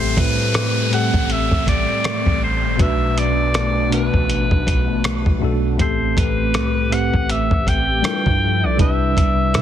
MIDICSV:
0, 0, Header, 1, 7, 480
1, 0, Start_track
1, 0, Tempo, 750000
1, 1788, Time_signature, 4, 2, 24, 8
1, 6156, End_track
2, 0, Start_track
2, 0, Title_t, "Alto saxophone"
2, 0, Program_c, 0, 65
2, 0, Note_on_c, 0, 72, 98
2, 120, Note_on_c, 0, 71, 97
2, 130, Note_off_c, 0, 72, 0
2, 594, Note_off_c, 0, 71, 0
2, 602, Note_on_c, 0, 78, 103
2, 842, Note_on_c, 0, 76, 103
2, 852, Note_off_c, 0, 78, 0
2, 1075, Note_off_c, 0, 76, 0
2, 1080, Note_on_c, 0, 74, 108
2, 1528, Note_off_c, 0, 74, 0
2, 1561, Note_on_c, 0, 72, 90
2, 1799, Note_on_c, 0, 76, 107
2, 1809, Note_off_c, 0, 72, 0
2, 2039, Note_on_c, 0, 74, 102
2, 2049, Note_off_c, 0, 76, 0
2, 2514, Note_off_c, 0, 74, 0
2, 2518, Note_on_c, 0, 71, 95
2, 3448, Note_off_c, 0, 71, 0
2, 3718, Note_on_c, 0, 72, 97
2, 3957, Note_on_c, 0, 71, 99
2, 3967, Note_off_c, 0, 72, 0
2, 4437, Note_on_c, 0, 78, 106
2, 4447, Note_off_c, 0, 71, 0
2, 4677, Note_on_c, 0, 76, 100
2, 4687, Note_off_c, 0, 78, 0
2, 4917, Note_on_c, 0, 79, 115
2, 4927, Note_off_c, 0, 76, 0
2, 5536, Note_on_c, 0, 74, 97
2, 5546, Note_off_c, 0, 79, 0
2, 5632, Note_off_c, 0, 74, 0
2, 5636, Note_on_c, 0, 76, 111
2, 6156, Note_off_c, 0, 76, 0
2, 6156, End_track
3, 0, Start_track
3, 0, Title_t, "Tine electric piano"
3, 0, Program_c, 1, 4
3, 0, Control_c, 1, 64, 127
3, 0, Note_on_c, 1, 45, 91
3, 0, Note_on_c, 1, 57, 80
3, 0, Note_on_c, 1, 60, 87
3, 0, Note_on_c, 1, 67, 84
3, 0, Note_on_c, 1, 69, 103
3, 0, Note_on_c, 1, 72, 59
3, 0, Note_on_c, 1, 76, 67
3, 386, Note_off_c, 1, 45, 0
3, 390, Note_off_c, 1, 57, 0
3, 394, Note_off_c, 1, 60, 0
3, 398, Note_off_c, 1, 67, 0
3, 402, Note_off_c, 1, 69, 0
3, 574, Note_on_c, 1, 45, 71
3, 582, Note_on_c, 1, 57, 66
3, 589, Note_on_c, 1, 60, 66
3, 597, Note_on_c, 1, 67, 64
3, 605, Note_on_c, 1, 69, 78
3, 1279, Note_off_c, 1, 45, 0
3, 1282, Note_off_c, 1, 57, 0
3, 1286, Note_off_c, 1, 60, 0
3, 1290, Note_off_c, 1, 67, 0
3, 1294, Note_off_c, 1, 69, 0
3, 1772, Note_on_c, 1, 47, 95
3, 1781, Note_on_c, 1, 57, 86
3, 1788, Note_on_c, 1, 62, 88
3, 1795, Note_on_c, 1, 66, 85
3, 1797, Control_c, 1, 64, 0
3, 1800, Note_off_c, 1, 76, 0
3, 1802, Note_off_c, 1, 72, 0
3, 1803, Note_on_c, 1, 71, 104
3, 1918, Control_c, 1, 64, 127
3, 2306, Note_off_c, 1, 47, 0
3, 2311, Note_off_c, 1, 57, 0
3, 2314, Note_off_c, 1, 62, 0
3, 2318, Note_off_c, 1, 66, 0
3, 2322, Note_off_c, 1, 71, 0
3, 2492, Note_on_c, 1, 47, 73
3, 2499, Note_on_c, 1, 57, 67
3, 2508, Note_on_c, 1, 62, 67
3, 2515, Note_on_c, 1, 66, 68
3, 2523, Note_on_c, 1, 71, 83
3, 3197, Note_off_c, 1, 47, 0
3, 3201, Note_off_c, 1, 57, 0
3, 3205, Note_off_c, 1, 62, 0
3, 3209, Note_off_c, 1, 66, 0
3, 3213, Note_off_c, 1, 71, 0
3, 3451, Note_on_c, 1, 47, 78
3, 3458, Note_on_c, 1, 57, 73
3, 3466, Note_on_c, 1, 62, 71
3, 3475, Note_on_c, 1, 66, 75
3, 3482, Note_on_c, 1, 69, 90
3, 3644, Note_off_c, 1, 47, 0
3, 3647, Note_off_c, 1, 57, 0
3, 3651, Note_off_c, 1, 62, 0
3, 3655, Note_off_c, 1, 66, 0
3, 3659, Note_off_c, 1, 69, 0
3, 3691, Note_on_c, 1, 45, 93
3, 3699, Note_on_c, 1, 57, 89
3, 3707, Note_on_c, 1, 60, 85
3, 3714, Note_on_c, 1, 67, 90
3, 3717, Control_c, 1, 64, 0
3, 3722, Note_on_c, 1, 69, 104
3, 3818, Control_c, 1, 64, 127
3, 4226, Note_off_c, 1, 45, 0
3, 4230, Note_off_c, 1, 57, 0
3, 4234, Note_off_c, 1, 60, 0
3, 4237, Note_off_c, 1, 67, 0
3, 4241, Note_off_c, 1, 69, 0
3, 4410, Note_on_c, 1, 45, 70
3, 4418, Note_on_c, 1, 57, 67
3, 4426, Note_on_c, 1, 60, 68
3, 4434, Note_on_c, 1, 67, 65
3, 4442, Note_on_c, 1, 71, 81
3, 5117, Note_off_c, 1, 45, 0
3, 5121, Note_off_c, 1, 57, 0
3, 5124, Note_off_c, 1, 60, 0
3, 5128, Note_off_c, 1, 67, 0
3, 5131, Note_on_c, 1, 55, 82
3, 5132, Note_off_c, 1, 71, 0
3, 5138, Note_on_c, 1, 62, 71
3, 5144, Note_on_c, 1, 64, 70
3, 5149, Note_on_c, 1, 65, 71
3, 5156, Control_c, 1, 64, 0
3, 5157, Note_on_c, 1, 69, 70
3, 5163, Note_on_c, 1, 70, 73
3, 5204, Note_off_c, 1, 70, 0
3, 5204, Note_on_c, 1, 71, 86
3, 5253, Control_c, 1, 64, 127
3, 5539, Note_off_c, 1, 55, 0
3, 5543, Note_off_c, 1, 62, 0
3, 5545, Note_off_c, 1, 64, 0
3, 5548, Note_off_c, 1, 65, 0
3, 5552, Note_off_c, 1, 69, 0
3, 5575, Note_off_c, 1, 71, 0
3, 5612, Note_on_c, 1, 48, 95
3, 5619, Note_on_c, 1, 55, 88
3, 5627, Note_on_c, 1, 62, 90
3, 5634, Note_on_c, 1, 64, 87
3, 5637, Control_c, 1, 64, 0
3, 5642, Note_on_c, 1, 71, 106
3, 5750, Control_c, 1, 64, 127
3, 6146, Note_off_c, 1, 48, 0
3, 6150, Note_off_c, 1, 55, 0
3, 6154, Note_off_c, 1, 62, 0
3, 6156, Note_off_c, 1, 64, 0
3, 6156, Note_off_c, 1, 71, 0
3, 6156, End_track
4, 0, Start_track
4, 0, Title_t, "Analog synth pad"
4, 0, Program_c, 2, 89
4, 0, Note_on_c, 2, 55, 79
4, 0, Note_on_c, 2, 57, 66
4, 0, Note_on_c, 2, 60, 79
4, 1768, Note_off_c, 2, 55, 0
4, 1769, Note_off_c, 2, 60, 0
4, 1791, Note_on_c, 2, 59, 70
4, 1792, Note_on_c, 2, 62, 81
4, 3691, Note_off_c, 2, 59, 0
4, 3691, Note_off_c, 2, 62, 0
4, 3708, Note_on_c, 2, 60, 72
4, 3708, Note_on_c, 2, 67, 86
4, 5122, Note_off_c, 2, 57, 0
4, 5134, Note_off_c, 2, 60, 0
4, 5134, Note_off_c, 2, 67, 0
4, 5145, Note_on_c, 2, 53, 71
4, 5145, Note_on_c, 2, 71, 84
4, 5146, Note_on_c, 2, 62, 76
4, 5146, Note_on_c, 2, 69, 74
4, 5148, Note_on_c, 2, 55, 82
4, 5148, Note_on_c, 2, 76, 73
4, 5622, Note_off_c, 2, 53, 0
4, 5622, Note_off_c, 2, 69, 0
4, 5622, Note_off_c, 2, 71, 0
4, 5623, Note_off_c, 2, 76, 0
4, 5626, Note_on_c, 2, 59, 70
4, 5626, Note_on_c, 2, 64, 81
4, 5627, Note_on_c, 2, 48, 77
4, 6156, Note_off_c, 2, 48, 0
4, 6156, Note_off_c, 2, 55, 0
4, 6156, Note_off_c, 2, 59, 0
4, 6156, Note_off_c, 2, 62, 0
4, 6156, Note_off_c, 2, 64, 0
4, 6156, End_track
5, 0, Start_track
5, 0, Title_t, "808-style bass"
5, 0, Program_c, 3, 38
5, 0, Note_on_c, 3, 33, 111
5, 100, Note_off_c, 3, 33, 0
5, 110, Note_on_c, 3, 45, 99
5, 703, Note_off_c, 3, 45, 0
5, 729, Note_on_c, 3, 33, 98
5, 959, Note_off_c, 3, 33, 0
5, 970, Note_on_c, 3, 33, 100
5, 1199, Note_off_c, 3, 33, 0
5, 1449, Note_on_c, 3, 33, 105
5, 1692, Note_on_c, 3, 31, 94
5, 1701, Note_off_c, 3, 33, 0
5, 1785, Note_off_c, 3, 31, 0
5, 1790, Note_on_c, 3, 35, 108
5, 2623, Note_off_c, 3, 35, 0
5, 2649, Note_on_c, 3, 33, 98
5, 2879, Note_off_c, 3, 33, 0
5, 2889, Note_on_c, 3, 35, 109
5, 3129, Note_on_c, 3, 33, 98
5, 3139, Note_off_c, 3, 35, 0
5, 3231, Note_on_c, 3, 35, 93
5, 3240, Note_off_c, 3, 33, 0
5, 3362, Note_off_c, 3, 35, 0
5, 3369, Note_on_c, 3, 35, 93
5, 3465, Note_off_c, 3, 35, 0
5, 3470, Note_on_c, 3, 35, 98
5, 3700, Note_off_c, 3, 35, 0
5, 3710, Note_on_c, 3, 33, 107
5, 3939, Note_off_c, 3, 33, 0
5, 3950, Note_on_c, 3, 33, 103
5, 4189, Note_on_c, 3, 36, 93
5, 4199, Note_off_c, 3, 33, 0
5, 4549, Note_off_c, 3, 36, 0
5, 4568, Note_on_c, 3, 33, 101
5, 4798, Note_off_c, 3, 33, 0
5, 4808, Note_on_c, 3, 33, 109
5, 5135, Note_off_c, 3, 33, 0
5, 5288, Note_on_c, 3, 43, 109
5, 5528, Note_on_c, 3, 35, 107
5, 5537, Note_off_c, 3, 43, 0
5, 5623, Note_off_c, 3, 35, 0
5, 5629, Note_on_c, 3, 36, 108
5, 5859, Note_off_c, 3, 36, 0
5, 5869, Note_on_c, 3, 36, 103
5, 6109, Note_on_c, 3, 48, 96
5, 6119, Note_off_c, 3, 36, 0
5, 6156, Note_off_c, 3, 48, 0
5, 6156, End_track
6, 0, Start_track
6, 0, Title_t, "Downlifter"
6, 0, Program_c, 4, 103
6, 0, Note_on_c, 4, 60, 72
6, 3708, Note_off_c, 4, 60, 0
6, 6156, End_track
7, 0, Start_track
7, 0, Title_t, "Drums"
7, 108, Note_on_c, 9, 36, 93
7, 112, Note_on_c, 9, 42, 78
7, 172, Note_off_c, 9, 36, 0
7, 176, Note_off_c, 9, 42, 0
7, 348, Note_on_c, 9, 42, 72
7, 352, Note_on_c, 9, 37, 109
7, 412, Note_off_c, 9, 42, 0
7, 416, Note_off_c, 9, 37, 0
7, 594, Note_on_c, 9, 42, 60
7, 658, Note_off_c, 9, 42, 0
7, 728, Note_on_c, 9, 36, 91
7, 792, Note_off_c, 9, 36, 0
7, 830, Note_on_c, 9, 42, 79
7, 894, Note_off_c, 9, 42, 0
7, 968, Note_on_c, 9, 36, 88
7, 1032, Note_off_c, 9, 36, 0
7, 1069, Note_on_c, 9, 36, 85
7, 1074, Note_on_c, 9, 42, 63
7, 1133, Note_off_c, 9, 36, 0
7, 1138, Note_off_c, 9, 42, 0
7, 1308, Note_on_c, 9, 42, 68
7, 1313, Note_on_c, 9, 37, 111
7, 1372, Note_off_c, 9, 42, 0
7, 1377, Note_off_c, 9, 37, 0
7, 1448, Note_on_c, 9, 36, 86
7, 1512, Note_off_c, 9, 36, 0
7, 1788, Note_on_c, 9, 36, 115
7, 1788, Note_on_c, 9, 42, 73
7, 1852, Note_off_c, 9, 36, 0
7, 1852, Note_off_c, 9, 42, 0
7, 2033, Note_on_c, 9, 42, 75
7, 2097, Note_off_c, 9, 42, 0
7, 2267, Note_on_c, 9, 42, 69
7, 2271, Note_on_c, 9, 37, 114
7, 2331, Note_off_c, 9, 42, 0
7, 2335, Note_off_c, 9, 37, 0
7, 2512, Note_on_c, 9, 42, 62
7, 2576, Note_off_c, 9, 42, 0
7, 2647, Note_on_c, 9, 36, 86
7, 2711, Note_off_c, 9, 36, 0
7, 2749, Note_on_c, 9, 42, 76
7, 2813, Note_off_c, 9, 42, 0
7, 2888, Note_on_c, 9, 36, 87
7, 2952, Note_off_c, 9, 36, 0
7, 2988, Note_on_c, 9, 36, 89
7, 2994, Note_on_c, 9, 42, 64
7, 3052, Note_off_c, 9, 36, 0
7, 3058, Note_off_c, 9, 42, 0
7, 3227, Note_on_c, 9, 42, 72
7, 3232, Note_on_c, 9, 37, 115
7, 3291, Note_off_c, 9, 42, 0
7, 3296, Note_off_c, 9, 37, 0
7, 3367, Note_on_c, 9, 36, 90
7, 3431, Note_off_c, 9, 36, 0
7, 3708, Note_on_c, 9, 36, 120
7, 3708, Note_on_c, 9, 42, 66
7, 3772, Note_off_c, 9, 36, 0
7, 3772, Note_off_c, 9, 42, 0
7, 3948, Note_on_c, 9, 36, 90
7, 3953, Note_on_c, 9, 42, 77
7, 4012, Note_off_c, 9, 36, 0
7, 4017, Note_off_c, 9, 42, 0
7, 4186, Note_on_c, 9, 42, 70
7, 4191, Note_on_c, 9, 37, 113
7, 4250, Note_off_c, 9, 42, 0
7, 4255, Note_off_c, 9, 37, 0
7, 4432, Note_on_c, 9, 42, 62
7, 4496, Note_off_c, 9, 42, 0
7, 4566, Note_on_c, 9, 36, 87
7, 4630, Note_off_c, 9, 36, 0
7, 4669, Note_on_c, 9, 42, 75
7, 4733, Note_off_c, 9, 42, 0
7, 4807, Note_on_c, 9, 36, 91
7, 4871, Note_off_c, 9, 36, 0
7, 4908, Note_on_c, 9, 36, 85
7, 4914, Note_on_c, 9, 42, 65
7, 4972, Note_off_c, 9, 36, 0
7, 4978, Note_off_c, 9, 42, 0
7, 5147, Note_on_c, 9, 42, 70
7, 5151, Note_on_c, 9, 37, 111
7, 5211, Note_off_c, 9, 42, 0
7, 5215, Note_off_c, 9, 37, 0
7, 5287, Note_on_c, 9, 36, 86
7, 5351, Note_off_c, 9, 36, 0
7, 5627, Note_on_c, 9, 36, 119
7, 5627, Note_on_c, 9, 42, 70
7, 5691, Note_off_c, 9, 36, 0
7, 5691, Note_off_c, 9, 42, 0
7, 5868, Note_on_c, 9, 36, 93
7, 5873, Note_on_c, 9, 42, 74
7, 5932, Note_off_c, 9, 36, 0
7, 5937, Note_off_c, 9, 42, 0
7, 6107, Note_on_c, 9, 42, 76
7, 6111, Note_on_c, 9, 37, 120
7, 6156, Note_off_c, 9, 37, 0
7, 6156, Note_off_c, 9, 42, 0
7, 6156, End_track
0, 0, End_of_file